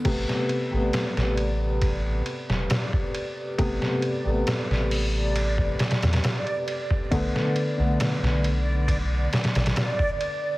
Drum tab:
CC |x-------------------------------|--------------------------------|--------------------------------|
RD |x---x---x---x---x---x---x---x---|x---x---x-------x---xxxxx-x-x---|x---x---x---x---x---xxxxx---x---|
HH |--------------------------------|------------o-------------------|--------------------------------|
SD |--o-----o-o-----------o-o-------|--o-----o-o---------ooooo-------|--o-----o-o---------ooooo-------|
BD |o---------------o---------o-----|o-----------------o-----------o-|o---------------o---------o-----|